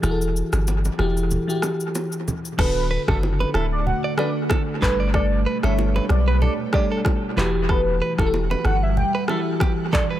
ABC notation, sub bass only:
X:1
M:4/4
L:1/16
Q:"Swing 16ths" 1/4=94
K:Edor
V:1 name="Sub bass" clef=bass
E,,,3 G,,,3 E,,,3 z6 z | D,,,3 F,,,3 D,,,3 z4 z G,,,2- | G,,,3 G,,,3 B,,,3 z4 z E,,,2- | E,,,3 E,,,3 G,,,3 z6 z |]